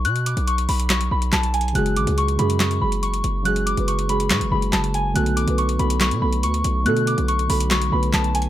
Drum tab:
HH |x--x--x--x--x--x--o--x--x--x-----x--x--x--x-x-x-|x--x--x--x--x--x--x--x--x--x-----x--x--x--x-----|x--x--x--x--x--x--x--x--x--x-----x--x--x--x-----|x--x--x--x--x--x--x--x--x--x-----x--x--x--x-----|
CP |------------------------x-----------x-----------|------------------------x-----------------------|------------------------x-----------x-----------|------------------------x-----------------------|
SD |------------------------o-----------o-----------|------------------------o-----------------------|------------------------o-----------o-----------|------------------------o-----------------------|

HH |x--x--x--x--x--x--o--x--x--x-----x--x--x--x-x---|
CP |------------------------x-----------x-----------|
SD |------------------------o-----------o-----------|